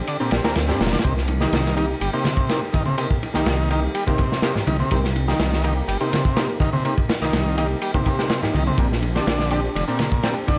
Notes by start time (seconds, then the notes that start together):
Already playing: C4 D4 G4
0.07 D3, ride, swell
0.20 A#2 C4 D4 G4
0.31 A#1 C4 D4 G4, snare, ride
0.44 D2 A#3 C4 D4 G4, snare, ride
0.55 D2, snare, ride
0.68 G2 C4 D4 G4, snare
0.80 F1 A#2, snare, ride
0.86 snare, ride
0.93 D3, snare, ride
0.99 snare, ride
1.04 C2 C3 A#3 D#4 G4, kick, ride
1.17 snare
1.28 ride, high bongo
1.41 D#3 A#3 D#4 G4, snare
1.52 C2, snare, ride
1.65 snare
1.76 D#3 A#3 D#4 G4, ride
2.01 G1 G3, ride
2.13 C3 A#3 D#4 G4
2.25 snare, ride, high conga
2.37 kick
2.49 A#3 D#4 G4, snare, ride
2.73 D#3, kick, ride, high bongo
2.86 C3, high conga
2.97 C3 A#3 D#4 G4, ride
3.11 kick
3.23 ride, high bongo
3.34 C2 D#3 A#3 D#4 G4, snare
3.46 C2, snare, ride
3.70 D#3 A#3 D#4 G4, ride
3.95 G3, ride
4.07 C3 A#3 D#4 G4, kick, high conga
4.18 kick, ride
4.32 snare
4.42 A#3 D#4 G4, snare, ride
4.55 snare, low conga
4.67 C2 D#3, ride, high bongo, high conga
4.79 C3, high conga
4.91 C2 C3 A#3 D#4 G4, kick, ride
5.04 snare
5.16 ride, high bongo
5.28 D#3 A#3 D#4 G4, snare
5.39 C2, snare, ride
5.53 snare
5.63 D#3 A#3 D#4 G4, ride
5.88 G1 G3, ride
6.00 C3 A#3 D#4 G4
6.13 snare, ride, high conga
6.25 kick
6.36 A#3 D#4 G4, snare, ride
6.60 D#3, kick, ride, high bongo
6.73 C3, high conga
6.85 C3 A#3 D#4 G4, ride
6.98 kick
7.09 snare, ride, high bongo
7.21 C2 D#3 A#3 D#4 G4, snare
7.33 C2, snare, ride
7.57 D#3 A#3 D#4 G4, ride
7.82 G3, ride
7.94 C3 A#3 D#4 G4, kick, high bongo, high conga
8.06 A#3 D#4 G4, kick, ride
8.19 A#3 D#4 G4, snare
8.30 snare, ride
8.43 A#3 D#4 G4, snare, low conga
8.53 C2 D#3, ride, high bongo, high conga
8.66 C3, high conga
8.78 A#1 A#2 C4 D4 G4, kick, ride
8.92 snare
9.02 ride, high bongo
9.15 D3 C4 D4 G4, snare
9.27 A#1, snare, ride
9.39 snare
9.50 D3 C4 D4 G4, ride
9.75 F1 D3, ride
9.88 A#2 C4 D4 G4
9.99 snare, ride, high conga
10.12 kick
10.23 C4 D4 G4, snare, ride
10.47 D3, kick, ride, high bongo